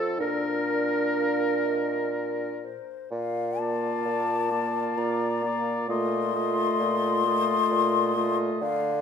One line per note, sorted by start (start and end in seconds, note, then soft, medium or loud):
0.00 0.21 F2 medium
0.00 0.22 F4 medium
0.00 0.19 A4 medium
0.00 0.20 A4 medium
0.20 2.77 A#2 medium
0.20 2.64 D4 medium
0.20 2.59 A#4 medium
0.20 2.60 A#4 medium
0.20 1.04 D5 medium
1.18 1.67 F5 medium
1.66 2.12 D#5 medium
2.13 2.66 D5 medium
2.64 3.13 C5 medium
3.11 3.94 A#2 medium
3.11 3.61 F5 medium
3.59 4.50 A#3 medium
3.59 4.50 F4 medium
3.59 4.50 D5 medium
3.59 4.99 A5 loud
4.06 4.87 A#2 medium
4.51 5.42 A#3 medium
4.51 5.42 F4 medium
4.51 5.42 D5 medium
4.98 5.78 A#2 medium
4.98 5.89 A#5 medium
5.44 5.89 A#3 medium
5.44 5.88 F4 medium
5.44 5.89 D5 medium
5.89 6.69 A#2 medium
5.89 6.34 A3 medium
5.89 6.33 F4 medium
5.89 6.34 D#5 medium
5.89 8.36 C6 loud
6.34 7.24 A3 medium
6.34 7.24 F4 medium
6.34 7.25 D#5 medium
6.80 7.61 A#2 medium
7.26 8.15 A3 medium
7.26 8.15 F4 medium
7.26 8.15 D#5 medium
7.71 8.51 A#2 medium
8.16 8.61 A3 medium
8.16 8.61 F4 medium
8.16 8.61 D#5 medium
8.62 9.01 D3 medium
8.62 9.01 F5 loud